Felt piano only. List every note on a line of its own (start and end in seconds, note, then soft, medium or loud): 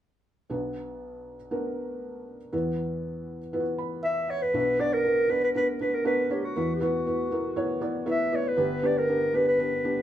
0.50 2.48 B1 medium
0.50 2.49 B2 soft
0.50 1.35 B3 medium
0.50 1.35 D4 medium
0.50 1.35 F#4 medium
0.50 1.36 B4 medium
1.51 2.36 B3 medium
1.51 2.36 D4 medium
1.51 2.37 F#4 soft
1.51 2.37 A#4 medium
2.53 4.51 E2 medium
2.53 4.51 E3 soft
2.53 3.38 B3 medium
2.53 3.38 E4 medium
2.53 3.38 F#4 medium
2.53 3.38 B4 medium
3.53 4.38 B3 medium
3.53 4.38 E4 medium
3.53 3.60 F4 soft
3.53 4.39 B4 medium
3.60 4.42 F#4 medium
3.78 4.02 B5 medium
4.03 4.27 E5 medium
4.29 4.52 F#5 soft
4.54 6.52 B1 soft
4.54 6.52 B2 soft
4.54 4.75 B3 medium
4.54 4.76 D4 medium
4.54 4.76 F#4 medium
4.54 4.76 B4 medium
4.79 5.00 B3 medium
4.79 5.01 D4 medium
4.79 5.01 F#4 medium
4.79 5.01 D5 medium
5.04 5.26 B3 medium
5.04 5.26 D4 medium
5.04 5.26 F#4 soft
5.04 5.26 B4 medium
5.28 5.51 B3 medium
5.28 5.51 D4 soft
5.28 5.51 F#4 medium
5.28 5.51 B4 medium
5.55 5.76 B3 medium
5.55 5.76 D4 medium
5.55 5.77 F#4 medium
5.55 5.77 B4 medium
5.81 6.02 B3 medium
5.81 6.02 D4 medium
5.81 6.02 F#4 medium
5.81 6.02 B4 medium
6.05 6.27 B3 medium
6.05 6.27 D4 medium
6.05 6.27 F#4 medium
6.05 6.27 A#4 medium
6.30 6.52 B3 soft
6.30 6.52 D4 soft
6.30 6.52 F#4 soft
6.30 6.52 C#5 medium
6.56 8.55 E2 soft
6.56 8.54 E3 medium
6.56 6.78 B3 medium
6.56 6.78 E4 medium
6.56 6.78 F#4 medium
6.56 6.78 B4 medium
6.81 7.02 B3 medium
6.81 7.03 E4 medium
6.81 7.03 F#4 medium
6.81 7.03 B4 medium
7.06 7.28 B3 medium
7.06 7.28 E4 medium
7.06 7.28 F#4 medium
7.06 7.28 B4 medium
7.31 7.53 B3 medium
7.31 7.53 E4 medium
7.31 7.53 F#4 medium
7.31 7.54 A#4 medium
7.56 7.78 B3 medium
7.56 7.78 E4 medium
7.56 7.78 F#4 medium
7.56 7.78 C#5 medium
7.81 8.03 B3 medium
7.81 8.03 E4 medium
7.81 8.03 F#4 medium
7.81 8.04 D5 medium
8.06 8.28 B3 medium
8.06 8.28 E4 medium
8.06 8.28 F#4 medium
8.06 8.29 B4 medium
8.32 8.54 B3 medium
8.32 8.54 E4 soft
8.32 8.54 F#4 soft
8.32 8.54 D5 medium
8.57 10.02 G1 medium
8.57 10.02 G2 medium
8.57 8.79 B3 medium
8.57 8.79 D4 medium
8.57 8.79 G4 medium
8.57 8.79 B4 medium
8.83 9.04 B3 medium
8.83 9.05 D4 medium
8.83 9.05 G4 medium
8.83 9.05 B4 medium
9.09 9.30 B3 medium
9.09 9.30 D4 medium
9.09 9.30 G4 medium
9.09 9.31 B4 medium
9.33 9.55 B3 medium
9.33 9.55 D4 medium
9.33 9.55 G4 medium
9.33 9.56 B4 medium
9.59 9.81 B3 medium
9.59 9.81 D4 soft
9.59 9.81 G4 medium
9.59 9.81 B4 medium
9.84 10.02 B3 medium
9.84 10.02 D4 medium
9.84 10.02 G4 medium
9.84 10.02 B4 medium